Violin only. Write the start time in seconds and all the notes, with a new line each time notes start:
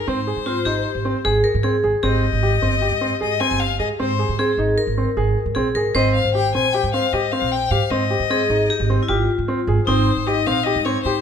Already playing: A#4
0.09 C5
2.04 D#5
3.22 D#5
3.40 G#5
3.60 F5
3.79 D#5
4.00 C5
5.95 D#5
6.14 F5
6.34 G5
6.55 G#5
6.73 G5
6.94 F5
7.13 D#5
7.32 F5
7.52 G5
7.71 F5
7.91 D#5
9.87 C5
10.27 D#5
10.47 F5
10.64 D#5
10.85 C#5
11.03 C5